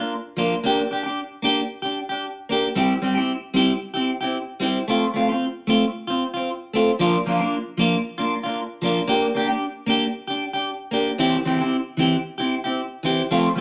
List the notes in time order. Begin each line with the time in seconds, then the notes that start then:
Already playing: F4
0.00 A#3 D4
0.37 F3 A#3 D4 F4
0.64 A#3 D4 G4
0.91 D4 G4
1.03 D4 G4
1.42 A#3 D4 G4
1.82 D4 G4
2.09 D4 G4
2.49 A#3 D4 G4
2.75 G3 C4 E4 G4
3.02 G3 C4 G4, muted clean electric guitar stroke
3.15 C4 E4 G4
3.54 G3 C4 E4 G4
3.94 C4 E4 G4
4.21 C4 E4 G4
4.60 G3 C4 E4 G4
4.88 A3 C4 F4
5.14 A3 C4 F4
5.29 C4 F4
5.67 A3 C4 F4
6.07 C4 F4
6.34 C4 F4
6.74 A3 C4 F4
6.99 F3 A#3 D4 F4
7.26 F3 A#3 D4 F4
7.39 A#3 D4 F4
7.78 F3 A#3 D4 F4
8.18 A#3 D4 F4
8.43 A#3 D4 F4
8.82 F3 A#3 D4 F4
9.07 A#3 D4 G4
9.35 A#3 D4 G4
9.48 D4 G4
9.86 A#3 D4 G4
10.27 D4 G4
10.53 D4 G4
10.91 A#3 D4 G4
11.18 E3 C4 E4 G4
11.45 E3 C4 E4 G4
11.59 C4 E4 G4
11.97 E3 C4 E4 G4
12.38 C4 E4 G4
12.64 C4 E4 G4
13.03 E3 C4 E4 G4
13.31 F3 A3 C4 F4
13.55 F3 A3 C4